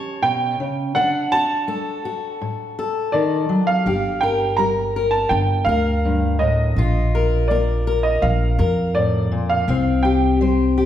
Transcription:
Already playing: E3 C#4 G4 C#5 A5
0.22 B2 G5
0.60 C#3
0.95 D3 D4 F#5
1.32 F#4 A5
1.68 A3 A4
2.05 F#4
2.41 A2
2.79 A4
3.12 D#3 D5
3.49 F#3
3.67 F5
3.86 G1 G2 G4
4.21 A#4 G5
4.57 G3 A#4 A#5
4.96 A#4
5.11 A5
5.29 G1 D3 G5
5.65 D2 A#4 F5
6.05 G2
6.39 A2 D#5
6.76 A#1 A#2 F4
7.15 A#4
7.48 A#3 A#4 D5
7.87 A#4
8.03 D#5
8.22 A#1 F3 F5
8.59 F2 A#4
8.95 A2 D5
9.31 A#2
9.49 F5
9.68 C2 C3 C4
10.03 G4 G5
10.41 G3 C5
10.78 G4

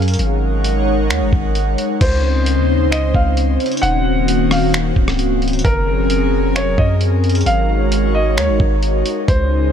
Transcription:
Already playing: F#2 F#3 C#4 G#4 A#4 F5
0.02 closed hi-hat
0.08 closed hi-hat
0.14 closed hi-hat
0.19 G#1 G#3 D#4 A#4 C#5 F#5, closed hi-hat
0.64 closed hi-hat
1.10 D#2, finger snap, closed hi-hat
1.21 G#1
1.33 G#1, kick
1.55 closed hi-hat
1.78 closed hi-hat
2.01 C#2 C#3 C4 C#4 D#4 C5, kick, closed hi-hat, crash
2.46 closed hi-hat
2.58 D#2
2.86 C#2
2.91 D#5, finger snap, closed hi-hat
3.14 C#2 F5, kick
3.37 closed hi-hat
3.60 closed hi-hat
3.66 closed hi-hat
3.72 closed hi-hat
3.77 closed hi-hat
3.82 D#1 D#3 A#3 F#4 F#5, closed hi-hat
4.28 closed hi-hat
4.51 F5, cross-stick, open hi-hat
4.74 finger snap, closed hi-hat
4.96 C#1, kick
5.08 cross-stick
5.19 closed hi-hat
5.42 closed hi-hat
5.48 closed hi-hat
5.53 closed hi-hat
5.59 closed hi-hat
5.64 F#1 F#3 C#4 G#4 A#4, kick, closed hi-hat
6.10 closed hi-hat
6.44 F1
6.56 C#5, finger snap, closed hi-hat
6.78 F#2 D#5, kick
7.01 closed hi-hat
7.24 closed hi-hat
7.29 closed hi-hat
7.35 closed hi-hat
7.41 closed hi-hat
7.46 G#1 G#3 D#4 F#4 C#5 F5, closed hi-hat
7.92 closed hi-hat
8.15 D#5
8.37 D#2 C#5, finger snap, closed hi-hat
8.49 G#1
8.60 G#1, kick
8.83 closed hi-hat
9.06 closed hi-hat
9.28 C#2 C#3 C#4 G#4 C5, kick, closed hi-hat

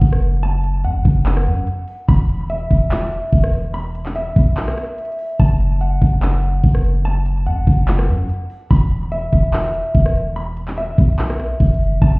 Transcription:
Already playing: F#5 A5
0.02 F#1, kick, closed hi-hat
0.13 cross-stick
0.22 closed hi-hat
0.43 A5, closed hi-hat
0.64 closed hi-hat
0.84 F#2 F#5, closed hi-hat
0.95 F#1
1.05 F#1, kick, closed hi-hat
1.26 clap, closed hi-hat
1.37 cross-stick
1.46 F#2, closed hi-hat
1.67 closed hi-hat
1.88 open hi-hat
2.08 E1 B5, kick, closed hi-hat
2.29 closed hi-hat
2.50 E5, closed hi-hat
2.71 E1, kick, closed hi-hat
2.91 clap, closed hi-hat
3.12 closed hi-hat
3.33 E1, kick, closed hi-hat
3.44 cross-stick
3.53 closed hi-hat
3.74 B5, closed hi-hat
3.95 closed hi-hat
4.06 clap
4.15 E5, closed hi-hat
4.36 B1, kick, closed hi-hat
4.57 clap, closed hi-hat
4.68 cross-stick
4.78 cross-stick, closed hi-hat
4.98 closed hi-hat
5.05 closed hi-hat
5.12 closed hi-hat
5.19 open hi-hat
5.40 F#1 A5, kick, closed hi-hat
5.60 closed hi-hat
5.81 F#5, closed hi-hat
6.02 F#1, kick, closed hi-hat
6.22 clap, closed hi-hat
6.43 closed hi-hat
6.64 F#1, kick, closed hi-hat
6.75 cross-stick
6.84 closed hi-hat
7.05 A5, closed hi-hat
7.26 closed hi-hat
7.46 F#2 F#5, closed hi-hat
7.57 F#1
7.67 F#1, kick, closed hi-hat
7.88 clap, closed hi-hat
7.99 cross-stick
8.09 F#2, closed hi-hat
8.29 closed hi-hat
8.50 open hi-hat
8.71 E1 B5, kick, closed hi-hat
8.92 closed hi-hat
9.12 E5, closed hi-hat
9.33 E1, kick, closed hi-hat
9.53 clap, closed hi-hat
9.74 closed hi-hat
9.95 E1, kick, closed hi-hat
10.06 cross-stick
10.15 closed hi-hat
10.36 B5, closed hi-hat
10.57 closed hi-hat
10.68 clap
10.77 E5, closed hi-hat
10.98 B1, kick, closed hi-hat
11.19 clap, closed hi-hat
11.30 cross-stick
11.40 cross-stick, closed hi-hat
11.60 E1, kick, closed hi-hat
11.67 closed hi-hat
11.74 closed hi-hat
11.81 G#1, open hi-hat
11.92 E1
12.02 F#1 A5, kick, closed hi-hat

